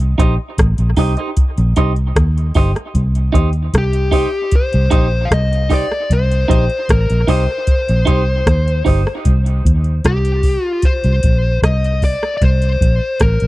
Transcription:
Already playing: C2
0.00 closed hi-hat
0.18 A#1 D#4 G4 C5 D#5, kick, closed hi-hat
0.58 A1, kick, cross-stick, closed hi-hat
0.78 A#1, closed hi-hat
0.96 C2 D#4 G4 C5 D#5, kick, open hi-hat
1.17 D#4 G4 C5 D#5, closed hi-hat
1.37 kick, closed hi-hat
1.58 A#1, closed hi-hat
1.76 C2 D#4 G4 C5 D#5, kick, closed hi-hat
1.96 closed hi-hat
2.16 D#2, kick, cross-stick, closed hi-hat
2.38 closed hi-hat
2.54 G1 D#4 G4 C5 D#5, kick, open hi-hat
2.75 muted clean electric guitar stroke, cross-stick, closed hi-hat
2.95 C2, kick, closed hi-hat
3.15 closed hi-hat
3.33 D#2 D#4 G4 C5 D#5, kick, closed hi-hat
3.53 closed hi-hat
3.74 C2, kick, cross-stick, closed hi-hat
3.78 G4
3.93 closed hi-hat
4.12 D#4 G4 C5 D#5, kick, open hi-hat
4.31 muted clean electric guitar stroke
4.52 kick, closed hi-hat
4.56 C5
4.73 C2, closed hi-hat
4.91 A#1 D#4 G4 C5 D#5, kick, closed hi-hat
5.25 F5
5.31 C2 D#5, kick, cross-stick, closed hi-hat
5.53 closed hi-hat
5.70 D#4 G4 C5 D#5, kick, open hi-hat
5.74 D5
5.92 cross-stick
6.10 C2 C5, kick, closed hi-hat
6.32 closed hi-hat
6.48 A#1 D#4 G4 C5 D#5, kick, closed hi-hat
6.70 closed hi-hat
6.89 A1 A#4, kick, cross-stick, closed hi-hat
7.10 A#1, closed hi-hat
7.27 C2 D#4 G4 C5 D#5, kick, open hi-hat
7.47 muted clean electric guitar stroke
7.67 kick, closed hi-hat
7.89 A#1, closed hi-hat
8.05 C2 D#4 G4 C5 D#5, kick, closed hi-hat
8.46 D#2, kick, cross-stick, closed hi-hat
8.68 closed hi-hat
8.85 G1 D#4 G4 C5 D#5, kick, open hi-hat
9.07 cross-stick
9.25 C2, kick, closed hi-hat
9.46 closed hi-hat
9.65 D#2, kick, closed hi-hat
9.84 closed hi-hat
10.04 C2 G4, kick, cross-stick, closed hi-hat
10.25 closed hi-hat
10.43 kick, open hi-hat
10.65 F4
10.82 C5, kick, closed hi-hat
11.04 C2, closed hi-hat
11.23 A#1, kick, closed hi-hat
11.62 C2 D#5, kick, cross-stick, closed hi-hat
11.84 closed hi-hat
12.02 D5, kick, open hi-hat
12.23 cross-stick
12.37 D5
12.42 C2 C5, kick, closed hi-hat
12.62 closed hi-hat
12.81 A#1, kick, closed hi-hat
13.20 A1 A#4, kick, cross-stick, closed hi-hat
13.40 A#1, closed hi-hat

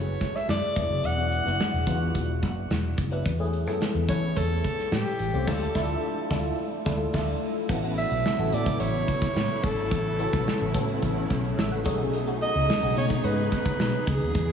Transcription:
Already playing: F#1 F#3 A3 C#4 E4 F#4 G#4 C#5
0.21 kick, snare, closed hi-hat
0.35 E5, snare
0.48 F#2 D5, snare, closed hi-hat
0.76 E1 F#3 B3 D4 E4 G#4, kick, closed hi-hat
0.90 F#1
1.04 E1 F#5, closed hi-hat
1.17 F#3 B3 D4 E4 F#4
1.32 closed hi-hat
1.45 F#1 F#3 B3 D4 E4 F#4, snare
1.60 snare, closed hi-hat
1.73 E1
1.87 E2 F#3 B3 D4 E4 F4, kick, closed hi-hat
1.94 F#4
2.15 E1, kick, closed hi-hat
2.43 F#1, kick, snare, closed hi-hat
2.70 E1, snare, closed hi-hat
2.98 F#1, kick, closed hi-hat
3.11 F#3 B3 D4 E4 B4
3.25 E2, kick, closed hi-hat
3.39 A3 B3 C#4 E4 G#4
3.53 closed hi-hat
3.66 F#2 A3 B3 C#4 E4 A4, snare
3.81 snare, closed hi-hat
3.94 E2
4.08 E3 A3 B3 C#4 E4 B4 C#5, kick, closed hi-hat
4.36 E2 A4, kick, closed hi-hat
4.64 kick, closed hi-hat
4.79 snare
4.92 A2 G4, snare, closed hi-hat
5.19 A1, closed hi-hat
5.33 C2 A3 C4 C#4 F4 G4
5.47 D2 A3 D4 E4 F4 A4, kick, snare, crash
5.75 D2 A3 D4 E4 F4 A4, kick, snare
6.30 D2 A3 D4 E4 F4 A4, kick, snare
6.85 D2 A3 D4 E4 F4 A4, kick, snare
7.13 D2 A3 D4 E4 F4 A4, kick, snare, crash
7.69 A1 C#3 F#3 A3 B3 C#4 E4 F#4 A4, kick, crash
7.83 B3 C#4 E4 F#4 B4, closed hi-hat
7.97 E5, closed hi-hat
8.11 B1, closed hi-hat
8.26 snare
8.38 A1 B3 C#4 E4 F#4 A4, closed hi-hat
8.52 A2 B3 C#4 E4 F#4 A4 D5, closed hi-hat
8.66 kick, closed hi-hat
8.80 A1 C#5, closed hi-hat
8.94 closed hi-hat
9.08 kick, closed hi-hat
9.22 kick, snare, closed hi-hat
9.36 A2, snare
9.63 A1 A4, kick, open hi-hat
9.77 G#1, closed hi-hat
9.91 A1 C#4, kick, closed hi-hat
10.19 B3 C#4 E4 F#4 A4, closed hi-hat
10.33 B1, kick, snare, closed hi-hat
10.48 snare
10.61 A1, closed hi-hat
10.74 A2 B3 C#4 E4 F#4 A4, kick, closed hi-hat
10.88 closed hi-hat
11.02 A1, kick, closed hi-hat
11.16 closed hi-hat
11.30 B1, kick, snare, closed hi-hat
11.44 C#5, closed hi-hat
11.57 A1 E5, snare
11.71 F#5, closed hi-hat
11.85 B1 A3 B3 C#4 D#4 F#4 G#4, kick, open hi-hat
11.99 closed hi-hat
12.13 closed hi-hat
12.26 A3 C#4 D#4 F#4 G#4, closed hi-hat
12.41 D#5, closed hi-hat
12.55 C#2, closed hi-hat
12.70 snare
12.82 B1 A3 C#4 D#4 F#4 G#4
12.95 B2 A3 C#4 D#4 F#4 G#4 C#5, closed hi-hat
13.10 kick, snare, closed hi-hat
13.24 G#2 B4, closed hi-hat
13.52 kick, snare, closed hi-hat
13.66 kick, closed hi-hat
13.79 B2, snare
13.94 closed hi-hat
14.07 C#2 G#4, kick, open hi-hat
14.20 D#2, closed hi-hat
14.35 E2 D3 F#3 E4, kick, closed hi-hat

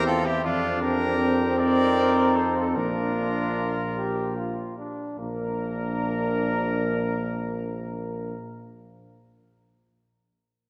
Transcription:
Already playing: E2 C4 E4
0.06 F4 A4
0.26 E4 G4
0.44 F2 C4 D4 F4
0.82 G4 A#4
1.58 D#4 A#4 D5
2.36 A4 C5
2.57 F4 A4
2.76 A#1 A#3 D4 F4 A#4
3.97 G4
4.37 F4
4.78 D4
5.18 A#1 A#3 D4 A#4

